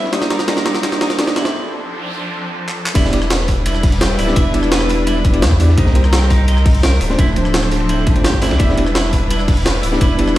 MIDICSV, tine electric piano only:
0, 0, Header, 1, 2, 480
1, 0, Start_track
1, 0, Tempo, 352941
1, 174, Time_signature, 4, 2, 24, 8
1, 14120, End_track
2, 0, Start_track
2, 0, Title_t, "Tine electric piano"
2, 0, Program_c, 0, 4
2, 164, Note_on_c, 0, 58, 75
2, 169, Note_on_c, 0, 62, 69
2, 175, Note_on_c, 0, 63, 67
2, 180, Note_on_c, 0, 67, 69
2, 185, Note_on_c, 0, 74, 84
2, 380, Note_off_c, 0, 58, 0
2, 383, Note_off_c, 0, 62, 0
2, 386, Note_off_c, 0, 63, 0
2, 388, Note_off_c, 0, 67, 0
2, 391, Note_off_c, 0, 74, 0
2, 403, Note_on_c, 0, 58, 73
2, 409, Note_on_c, 0, 62, 67
2, 414, Note_on_c, 0, 63, 67
2, 419, Note_on_c, 0, 67, 66
2, 424, Note_on_c, 0, 74, 81
2, 489, Note_off_c, 0, 58, 0
2, 492, Note_off_c, 0, 62, 0
2, 495, Note_off_c, 0, 63, 0
2, 497, Note_off_c, 0, 67, 0
2, 499, Note_off_c, 0, 74, 0
2, 641, Note_on_c, 0, 58, 77
2, 647, Note_on_c, 0, 62, 69
2, 652, Note_on_c, 0, 63, 70
2, 658, Note_on_c, 0, 67, 70
2, 662, Note_on_c, 0, 74, 85
2, 859, Note_off_c, 0, 58, 0
2, 862, Note_off_c, 0, 62, 0
2, 864, Note_off_c, 0, 63, 0
2, 867, Note_off_c, 0, 67, 0
2, 869, Note_off_c, 0, 74, 0
2, 882, Note_on_c, 0, 58, 75
2, 887, Note_on_c, 0, 62, 69
2, 892, Note_on_c, 0, 63, 68
2, 898, Note_on_c, 0, 67, 70
2, 903, Note_on_c, 0, 74, 85
2, 968, Note_off_c, 0, 58, 0
2, 971, Note_off_c, 0, 62, 0
2, 974, Note_off_c, 0, 63, 0
2, 976, Note_off_c, 0, 67, 0
2, 979, Note_off_c, 0, 74, 0
2, 1123, Note_on_c, 0, 58, 76
2, 1128, Note_on_c, 0, 62, 70
2, 1134, Note_on_c, 0, 63, 71
2, 1139, Note_on_c, 0, 67, 72
2, 1143, Note_on_c, 0, 74, 84
2, 1340, Note_off_c, 0, 58, 0
2, 1342, Note_off_c, 0, 62, 0
2, 1345, Note_off_c, 0, 63, 0
2, 1348, Note_off_c, 0, 67, 0
2, 1350, Note_off_c, 0, 74, 0
2, 1363, Note_on_c, 0, 58, 75
2, 1368, Note_on_c, 0, 62, 70
2, 1373, Note_on_c, 0, 63, 72
2, 1379, Note_on_c, 0, 67, 70
2, 1384, Note_on_c, 0, 74, 82
2, 1449, Note_off_c, 0, 58, 0
2, 1451, Note_off_c, 0, 62, 0
2, 1454, Note_off_c, 0, 63, 0
2, 1457, Note_off_c, 0, 67, 0
2, 1459, Note_off_c, 0, 74, 0
2, 1602, Note_on_c, 0, 58, 79
2, 1607, Note_on_c, 0, 62, 72
2, 1613, Note_on_c, 0, 63, 72
2, 1618, Note_on_c, 0, 67, 74
2, 1623, Note_on_c, 0, 74, 90
2, 1819, Note_off_c, 0, 58, 0
2, 1822, Note_off_c, 0, 62, 0
2, 1825, Note_off_c, 0, 63, 0
2, 1827, Note_off_c, 0, 67, 0
2, 1830, Note_off_c, 0, 74, 0
2, 1842, Note_on_c, 0, 59, 75
2, 1848, Note_on_c, 0, 62, 71
2, 1853, Note_on_c, 0, 64, 71
2, 1858, Note_on_c, 0, 67, 68
2, 1863, Note_on_c, 0, 74, 82
2, 1929, Note_off_c, 0, 59, 0
2, 1932, Note_off_c, 0, 62, 0
2, 1934, Note_off_c, 0, 64, 0
2, 1937, Note_off_c, 0, 67, 0
2, 1939, Note_off_c, 0, 74, 0
2, 4004, Note_on_c, 0, 59, 76
2, 4009, Note_on_c, 0, 62, 71
2, 4015, Note_on_c, 0, 64, 69
2, 4020, Note_on_c, 0, 67, 70
2, 4024, Note_on_c, 0, 74, 85
2, 4220, Note_off_c, 0, 59, 0
2, 4223, Note_off_c, 0, 62, 0
2, 4226, Note_off_c, 0, 64, 0
2, 4228, Note_off_c, 0, 67, 0
2, 4231, Note_off_c, 0, 74, 0
2, 4243, Note_on_c, 0, 59, 75
2, 4249, Note_on_c, 0, 62, 70
2, 4254, Note_on_c, 0, 64, 69
2, 4259, Note_on_c, 0, 67, 68
2, 4264, Note_on_c, 0, 74, 82
2, 4329, Note_off_c, 0, 59, 0
2, 4332, Note_off_c, 0, 62, 0
2, 4334, Note_off_c, 0, 64, 0
2, 4337, Note_off_c, 0, 67, 0
2, 4340, Note_off_c, 0, 74, 0
2, 5805, Note_on_c, 0, 59, 85
2, 5811, Note_on_c, 0, 62, 76
2, 5815, Note_on_c, 0, 64, 78
2, 5821, Note_on_c, 0, 67, 78
2, 5826, Note_on_c, 0, 74, 93
2, 5900, Note_off_c, 0, 59, 0
2, 5903, Note_off_c, 0, 62, 0
2, 5905, Note_off_c, 0, 64, 0
2, 5908, Note_off_c, 0, 67, 0
2, 5911, Note_off_c, 0, 74, 0
2, 5925, Note_on_c, 0, 59, 72
2, 5930, Note_on_c, 0, 62, 68
2, 5935, Note_on_c, 0, 64, 68
2, 5940, Note_on_c, 0, 67, 67
2, 5945, Note_on_c, 0, 74, 80
2, 6010, Note_off_c, 0, 59, 0
2, 6012, Note_off_c, 0, 62, 0
2, 6015, Note_off_c, 0, 64, 0
2, 6018, Note_off_c, 0, 67, 0
2, 6020, Note_off_c, 0, 74, 0
2, 6154, Note_on_c, 0, 59, 81
2, 6165, Note_on_c, 0, 62, 74
2, 6175, Note_on_c, 0, 64, 73
2, 6186, Note_on_c, 0, 67, 74
2, 6197, Note_on_c, 0, 74, 89
2, 7216, Note_off_c, 0, 59, 0
2, 7221, Note_off_c, 0, 62, 0
2, 7226, Note_off_c, 0, 64, 0
2, 7231, Note_off_c, 0, 67, 0
2, 7237, Note_off_c, 0, 74, 0
2, 7247, Note_on_c, 0, 59, 74
2, 7253, Note_on_c, 0, 62, 69
2, 7257, Note_on_c, 0, 64, 68
2, 7263, Note_on_c, 0, 67, 70
2, 7268, Note_on_c, 0, 74, 83
2, 7378, Note_off_c, 0, 59, 0
2, 7381, Note_off_c, 0, 62, 0
2, 7383, Note_off_c, 0, 64, 0
2, 7386, Note_off_c, 0, 67, 0
2, 7389, Note_off_c, 0, 74, 0
2, 7605, Note_on_c, 0, 59, 92
2, 7611, Note_on_c, 0, 62, 84
2, 7616, Note_on_c, 0, 64, 82
2, 7622, Note_on_c, 0, 67, 86
2, 7626, Note_on_c, 0, 74, 97
2, 7738, Note_off_c, 0, 59, 0
2, 7741, Note_off_c, 0, 62, 0
2, 7744, Note_off_c, 0, 64, 0
2, 7747, Note_off_c, 0, 67, 0
2, 7749, Note_off_c, 0, 74, 0
2, 7844, Note_on_c, 0, 58, 77
2, 7849, Note_on_c, 0, 60, 70
2, 7855, Note_on_c, 0, 63, 70
2, 7859, Note_on_c, 0, 67, 73
2, 7865, Note_on_c, 0, 72, 85
2, 8060, Note_off_c, 0, 58, 0
2, 8063, Note_off_c, 0, 60, 0
2, 8066, Note_off_c, 0, 63, 0
2, 8068, Note_off_c, 0, 67, 0
2, 8071, Note_off_c, 0, 72, 0
2, 8081, Note_on_c, 0, 58, 77
2, 8088, Note_on_c, 0, 60, 70
2, 8093, Note_on_c, 0, 63, 69
2, 8097, Note_on_c, 0, 67, 68
2, 8103, Note_on_c, 0, 72, 82
2, 8168, Note_off_c, 0, 58, 0
2, 8171, Note_off_c, 0, 60, 0
2, 8174, Note_off_c, 0, 63, 0
2, 8176, Note_off_c, 0, 67, 0
2, 8179, Note_off_c, 0, 72, 0
2, 9642, Note_on_c, 0, 57, 84
2, 9648, Note_on_c, 0, 60, 77
2, 9653, Note_on_c, 0, 62, 78
2, 9659, Note_on_c, 0, 65, 77
2, 9664, Note_on_c, 0, 72, 92
2, 9739, Note_off_c, 0, 57, 0
2, 9742, Note_off_c, 0, 60, 0
2, 9744, Note_off_c, 0, 62, 0
2, 9747, Note_off_c, 0, 65, 0
2, 9750, Note_off_c, 0, 72, 0
2, 9761, Note_on_c, 0, 57, 74
2, 9767, Note_on_c, 0, 60, 68
2, 9772, Note_on_c, 0, 62, 70
2, 9777, Note_on_c, 0, 65, 67
2, 9781, Note_on_c, 0, 72, 80
2, 9848, Note_off_c, 0, 57, 0
2, 9851, Note_off_c, 0, 60, 0
2, 9854, Note_off_c, 0, 62, 0
2, 9856, Note_off_c, 0, 65, 0
2, 9858, Note_off_c, 0, 72, 0
2, 9991, Note_on_c, 0, 57, 81
2, 10001, Note_on_c, 0, 60, 74
2, 10012, Note_on_c, 0, 62, 74
2, 10022, Note_on_c, 0, 53, 75
2, 10032, Note_on_c, 0, 72, 88
2, 11054, Note_off_c, 0, 57, 0
2, 11059, Note_off_c, 0, 60, 0
2, 11065, Note_off_c, 0, 62, 0
2, 11070, Note_off_c, 0, 53, 0
2, 11074, Note_off_c, 0, 72, 0
2, 11082, Note_on_c, 0, 57, 72
2, 11089, Note_on_c, 0, 60, 69
2, 11093, Note_on_c, 0, 62, 69
2, 11099, Note_on_c, 0, 65, 68
2, 11104, Note_on_c, 0, 72, 81
2, 11216, Note_off_c, 0, 57, 0
2, 11219, Note_off_c, 0, 60, 0
2, 11222, Note_off_c, 0, 62, 0
2, 11224, Note_off_c, 0, 65, 0
2, 11227, Note_off_c, 0, 72, 0
2, 11443, Note_on_c, 0, 57, 90
2, 11449, Note_on_c, 0, 60, 82
2, 11453, Note_on_c, 0, 62, 81
2, 11459, Note_on_c, 0, 65, 83
2, 11464, Note_on_c, 0, 72, 101
2, 11578, Note_off_c, 0, 57, 0
2, 11581, Note_off_c, 0, 60, 0
2, 11583, Note_off_c, 0, 62, 0
2, 11585, Note_off_c, 0, 65, 0
2, 11588, Note_off_c, 0, 72, 0
2, 11682, Note_on_c, 0, 59, 79
2, 11687, Note_on_c, 0, 62, 70
2, 11692, Note_on_c, 0, 64, 69
2, 11697, Note_on_c, 0, 67, 71
2, 11702, Note_on_c, 0, 74, 86
2, 11899, Note_off_c, 0, 59, 0
2, 11902, Note_off_c, 0, 62, 0
2, 11904, Note_off_c, 0, 64, 0
2, 11907, Note_off_c, 0, 67, 0
2, 11910, Note_off_c, 0, 74, 0
2, 11924, Note_on_c, 0, 59, 73
2, 11929, Note_on_c, 0, 62, 69
2, 11935, Note_on_c, 0, 64, 67
2, 11940, Note_on_c, 0, 67, 70
2, 11945, Note_on_c, 0, 74, 81
2, 12009, Note_off_c, 0, 59, 0
2, 12012, Note_off_c, 0, 62, 0
2, 12015, Note_off_c, 0, 64, 0
2, 12018, Note_off_c, 0, 67, 0
2, 12020, Note_off_c, 0, 74, 0
2, 13484, Note_on_c, 0, 59, 83
2, 13489, Note_on_c, 0, 62, 79
2, 13494, Note_on_c, 0, 64, 77
2, 13500, Note_on_c, 0, 67, 79
2, 13505, Note_on_c, 0, 74, 93
2, 13580, Note_off_c, 0, 59, 0
2, 13582, Note_off_c, 0, 62, 0
2, 13585, Note_off_c, 0, 64, 0
2, 13588, Note_off_c, 0, 67, 0
2, 13590, Note_off_c, 0, 74, 0
2, 13604, Note_on_c, 0, 59, 74
2, 13609, Note_on_c, 0, 62, 68
2, 13613, Note_on_c, 0, 64, 68
2, 13619, Note_on_c, 0, 67, 67
2, 13623, Note_on_c, 0, 74, 83
2, 13689, Note_off_c, 0, 59, 0
2, 13692, Note_off_c, 0, 62, 0
2, 13694, Note_off_c, 0, 64, 0
2, 13697, Note_off_c, 0, 67, 0
2, 13699, Note_off_c, 0, 74, 0
2, 13834, Note_on_c, 0, 59, 82
2, 13845, Note_on_c, 0, 62, 75
2, 13855, Note_on_c, 0, 64, 73
2, 13866, Note_on_c, 0, 67, 74
2, 13876, Note_on_c, 0, 74, 88
2, 14120, Note_off_c, 0, 59, 0
2, 14120, Note_off_c, 0, 62, 0
2, 14120, Note_off_c, 0, 64, 0
2, 14120, Note_off_c, 0, 67, 0
2, 14120, Note_off_c, 0, 74, 0
2, 14120, End_track
0, 0, End_of_file